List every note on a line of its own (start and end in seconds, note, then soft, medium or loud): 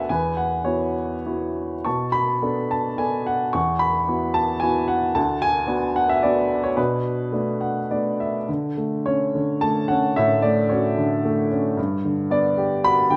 0.00 0.11 D2 medium
0.00 0.11 B3 soft
0.00 0.11 D4 soft
0.00 0.10 F#4 soft
0.00 0.11 F#5 medium
0.00 0.09 G#5 medium
0.00 0.10 A5 medium
0.00 0.10 B5 medium
0.09 1.82 E2 medium
0.09 0.93 B4 soft
0.09 0.36 G#5 medium
0.37 0.67 F#5 medium
0.65 1.13 B3 soft
0.65 1.14 E4 soft
0.65 1.14 F#4 soft
0.65 1.21 C#5 medium
1.26 1.73 B3 soft
1.26 1.74 E4 soft
1.26 1.74 F#4 soft
1.85 3.51 B2 soft
1.85 2.67 A5 soft
1.85 2.15 C#6 medium
2.12 2.72 B5 medium
2.42 2.88 B3 soft
2.42 2.88 D4 soft
2.42 2.88 A4 soft
2.71 3.00 A5 medium
2.98 3.43 B3 soft
2.98 3.43 D4 soft
2.98 3.43 A4 soft
2.98 3.27 G#5 medium
3.27 3.54 F#5 medium
3.53 5.12 E2 medium
3.53 4.32 F#5 medium
3.53 3.82 C#6 medium
3.79 4.36 B5 medium
4.08 4.52 B3 soft
4.08 4.52 E4 soft
4.08 4.52 F#4 soft
4.34 4.63 A5 medium
4.60 5.05 B3 soft
4.60 5.05 E4 soft
4.60 5.06 F#4 soft
4.60 4.86 G#5 medium
4.88 5.15 F#5 medium
5.15 6.73 D2 medium
5.15 5.92 F#5 medium
5.15 5.42 A5 medium
5.42 5.97 G#5 loud
5.67 6.11 B3 soft
5.67 6.11 D4 soft
5.67 6.11 F#4 soft
5.96 6.10 F#5 medium
6.09 6.24 E5 medium
6.23 6.67 B3 soft
6.23 6.67 D4 soft
6.23 6.67 F#4 medium
6.23 6.61 D5 medium
6.63 6.78 C#5 medium
6.77 8.44 B2 medium
6.77 7.32 D4 soft
6.77 7.86 B4 medium
7.32 7.78 A3 soft
7.32 7.78 B3 soft
7.32 7.79 D4 soft
7.61 7.88 F#5 soft
7.91 8.37 A3 soft
7.91 8.37 B3 soft
7.91 8.37 D4 soft
7.91 8.18 D5 soft
8.20 8.47 E5 soft
8.49 9.33 D3 medium
8.77 9.61 A3 soft
9.06 9.90 C#4 soft
9.06 9.64 C#5 medium
9.35 10.41 D3 soft
9.61 10.42 A3 soft
9.61 9.90 A5 medium
9.88 10.70 C#4 soft
9.88 10.17 F#5 medium
10.16 11.74 A2 medium
10.16 10.68 C#5 medium
10.16 10.45 E5 medium
10.42 11.23 A3 soft
10.42 10.68 D5 medium
10.70 11.50 C#4 soft
10.70 11.48 F#4 soft
10.70 11.47 C#5 medium
10.97 11.75 D3 medium
11.25 11.76 A3 medium
11.51 11.77 C#4 soft
11.77 13.17 G2 medium
12.05 13.09 D3 soft
12.30 13.17 B3 soft
12.30 12.86 D5 medium
12.58 13.17 G4 medium
12.84 13.17 F#4 medium
12.84 13.13 B5 loud
13.10 13.17 D3 soft
13.10 13.17 G5 medium